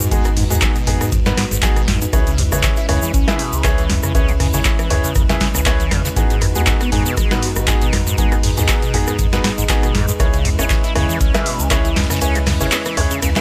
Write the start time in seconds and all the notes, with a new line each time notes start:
Already playing: G#3 D#4 F#4 B4
0.00 mid tom
0.11 G#1 G#3 B3 D#4 F#4 G#4, kick, closed hi-hat, ride, shaker
0.25 G#2, cross-stick, closed hi-hat, shaker
0.37 G#2, mid tom, open hi-hat
0.50 D#2 G#2 B3 D#4 F#4 G#4, closed hi-hat, shaker
0.62 F#3, kick, cross-stick, snare, clap, closed hi-hat, ride, shaker
0.76 B2, closed hi-hat, shaker
0.87 G#1 G#2 B3 D#4 F#4 G#4, mid tom, open hi-hat, ride
1.01 G#2, cross-stick, closed hi-hat, shaker
1.12 G#1 G#2, kick, closed hi-hat, mid tom, ride, shaker
1.26 G#2 B3 D#4 F#4 B4, snare, closed hi-hat, ride, shaker
1.37 G#2, cross-stick, snare, open hi-hat, ride
1.51 G#1 G#2, closed hi-hat, shaker
1.62 F#3 B3 D#4 F#4 G#4, kick, snare, clap, closed hi-hat, ride, shaker
1.76 B2, cross-stick, closed hi-hat, shaker
1.88 G#1 G#2, snare, mid tom, open hi-hat, ride
2.02 G#2, closed hi-hat, shaker
2.13 C#2 C#3 C#4 E4 G#4 B4 C#5, kick, cross-stick, closed hi-hat, ride, shaker
2.27 C#3, closed hi-hat, shaker
2.38 B2, mid tom, open hi-hat, ride
2.52 G#1 C#3 E4 G#4 B4 C#5, cross-stick, closed hi-hat, shaker
2.63 kick, snare, clap, closed hi-hat, ride, shaker
2.76 E4, snare, closed hi-hat, shaker
2.89 C#2 C#3 E4 G#4 B4 C#5, cross-stick, mid tom, open hi-hat, ride
3.02 E3, ride, shaker
3.14 C#2 C#4, kick, closed hi-hat, ride, shaker
3.28 C#3 E4 G#4 B4 E5, cross-stick, snare, closed hi-hat, ride, shaker
3.39 B2, open hi-hat, ride
3.53 C#2 C#3, closed hi-hat, shaker
3.64 C#3 E4 G#4 B4 C#5, kick, cross-stick, snare, clap, closed hi-hat, ride, shaker
3.78 E3, closed hi-hat, ride, shaker
3.89 C#2 C#3, snare, mid tom, open hi-hat, ride
4.03 C#3, cross-stick, mid tom, shaker
4.15 C#2 C#4 E4 G#4 B4 C#5, kick, closed hi-hat, ride, shaker
4.29 C#3, closed hi-hat, shaker
4.40 C#3, cross-stick, mid tom, open hi-hat
4.53 G#1 C#3 E4 G#4 B4 C#5, closed hi-hat, shaker
4.65 B3, kick, snare, clap, closed hi-hat, ride, shaker
4.79 E3, cross-stick, closed hi-hat, shaker
4.90 C#2 C#3 E4 G#4 B4 C#5, mid tom, open hi-hat, ride
5.04 C#3, closed hi-hat, shaker
5.15 C#2 C#3, kick, cross-stick, closed hi-hat, mid tom, ride, shaker
5.29 C#3 E4 G#4 B4 E5, snare, closed hi-hat, ride, shaker
5.40 C#3, kick, snare, open hi-hat, ride
5.55 C#2 C#3, cross-stick, closed hi-hat, shaker
5.66 B3 E4 G#4 B4 C#5, kick, snare, clap, closed hi-hat, ride, shaker
5.80 E3, closed hi-hat, shaker
5.91 G#1 C#3, cross-stick, snare, mid tom, open hi-hat, ride
6.05 C#3, snare, closed hi-hat, shaker
6.16 G#1 G#2 G#3 B3 D#4 F#4 G#4, kick, closed hi-hat, ride, shaker
6.30 G#2, closed hi-hat, shaker
6.41 F#2, cross-stick, mid tom, open hi-hat, ride
6.55 D#2 G#3 B3 D#4 F#4 G#4, closed hi-hat, shaker
6.66 G#2, kick, snare, clap, closed hi-hat, ride, shaker
6.81 B3, cross-stick, snare, closed hi-hat, shaker
6.92 G#1 G#2 B3 D#4 F#4 G#4, mid tom, open hi-hat, ride
7.06 B2, ride, shaker
7.17 G#1 G#3, kick, cross-stick, closed hi-hat, ride, shaker
7.31 G#2 B3 D#4 F#4 B4, snare, closed hi-hat, ride, shaker
7.42 F#2, open hi-hat, ride
7.56 G#1 G#2, cross-stick, closed hi-hat, shaker
7.67 G#2 B3 D#4 F#4 G#4, kick, snare, clap, closed hi-hat, ride, shaker
7.82 B2, closed hi-hat, ride, shaker
7.92 G#1 G#2, cross-stick, snare, mid tom, open hi-hat, ride
8.07 G#2, mid tom, shaker
8.18 G#1 G#3 B3 D#4 F#4 G#4, kick, closed hi-hat, ride, shaker
8.32 G#2, cross-stick, closed hi-hat, shaker
8.43 G#2, mid tom, open hi-hat
8.57 D#2 G#2 B3 D#4 F#4 G#4, closed hi-hat, shaker
8.68 F#3, kick, cross-stick, snare, clap, closed hi-hat, ride, shaker
8.82 B2, closed hi-hat, shaker
8.94 G#1 G#2 B3 D#4 F#4 G#4, mid tom, open hi-hat, ride
9.07 G#2, cross-stick, closed hi-hat, shaker
9.19 G#1 G#2, kick, closed hi-hat, mid tom, ride, shaker
9.33 G#2 B3 D#4 F#4 B4, snare, closed hi-hat, ride, shaker
9.44 G#2, cross-stick, snare, open hi-hat, ride
9.58 G#1 G#2, closed hi-hat, shaker
9.69 F#3 B3 D#4 F#4 G#4, kick, snare, clap, closed hi-hat, ride, shaker
9.83 B2, cross-stick, closed hi-hat, shaker
9.95 G#1 G#2, snare, mid tom, open hi-hat, ride
10.08 G#2, closed hi-hat, shaker
10.20 C#2 C#3 C#4 E4 G#4 B4 C#5, kick, cross-stick, closed hi-hat, ride, shaker
10.33 C#3, closed hi-hat, shaker
10.45 B2, mid tom, open hi-hat, ride
10.59 G#1 C#4 E4 G#4 B4 C#5, cross-stick, closed hi-hat, shaker
10.70 C#3, kick, snare, clap, closed hi-hat, ride, shaker
10.84 E4, snare, closed hi-hat, shaker
10.95 C#2 C#3 E4 G#4 B4 C#5, cross-stick, mid tom, open hi-hat, ride
11.09 E3, ride, shaker
11.20 C#2 C#4, kick, closed hi-hat, ride, shaker
11.34 C#3 E4 G#4 B4 E5, cross-stick, snare, closed hi-hat, ride, shaker
11.46 B2, open hi-hat, ride
11.59 C#2 C#3, closed hi-hat, shaker
11.70 C#3 E4 G#4 B4 C#5, kick, cross-stick, snare, clap, closed hi-hat, ride, shaker
11.85 E3, closed hi-hat, ride, shaker
11.96 C#2 C#3, snare, mid tom, open hi-hat, ride
12.03 snare, ride
12.10 C#3, cross-stick, snare, mid tom, ride, shaker
12.15 snare, ride
12.21 C#2 C#4 E4 G#4 B4 C#5, closed hi-hat, ride, shaker
12.35 C#3, closed hi-hat, shaker
12.46 C#3, cross-stick, snare, mid tom, open hi-hat
12.60 G#1 C#3 E4 G#4 B4 C#5, closed hi-hat, shaker
12.72 B3, snare, clap, closed hi-hat, ride, shaker
12.85 E3, cross-stick, closed hi-hat, shaker
12.97 C#2 C#3 E4 G#4 B4 C#5, mid tom, open hi-hat, ride
13.11 C#3, closed hi-hat, shaker
13.22 C#2 C#3, cross-stick, closed hi-hat, mid tom, ride, shaker
13.36 C#3 E4 G#4 B4 E5, snare, clap, closed hi-hat, ride, shaker